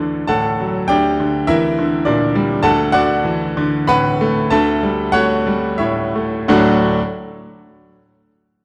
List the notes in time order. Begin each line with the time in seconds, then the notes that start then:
Already playing: D2 D3 E3 D4 F#4 A4 D5 F#5
0.27 A2 A4 F#5 A5
0.60 F#3
0.88 D2 G4 D5 G5
1.20 D3
1.47 E3 E4 A#4 E5
1.79 D3
2.05 A#2 D4 A#4 D5
2.35 G3
2.63 D2 A4 F#5 A5
2.92 D3 F#4 D5 F#5
3.24 E3
3.57 D3
3.87 A2 B4 F#5 B5
4.21 A3
4.50 D2 A4 E5 A5
4.83 G3
5.12 A3 F#4 C#5 F#5
5.47 G3
5.78 A2 E4 C#5 E5
6.16 A3
6.48 D2 A2 F#3 A3 D4 F#4 F#5